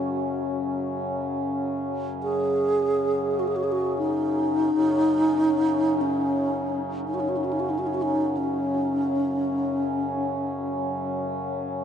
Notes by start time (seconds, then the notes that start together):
Already playing: F#2 C#3 C#4 F#4
2.23 G#4
3.39 F#4
3.48 G#4
3.56 F#4
3.64 G#4
3.72 F#4
3.98 D#4
4.71 F#2 C#3
6.01 C#4
7.07 D#4
7.14 F#4
7.20 D#4
7.29 F#4
7.37 D#4
7.44 F#4
7.53 D#4
7.60 F#4
7.70 D#4
7.79 F#4
7.87 D#4
7.94 F#4
8.02 D#4
8.37 C#4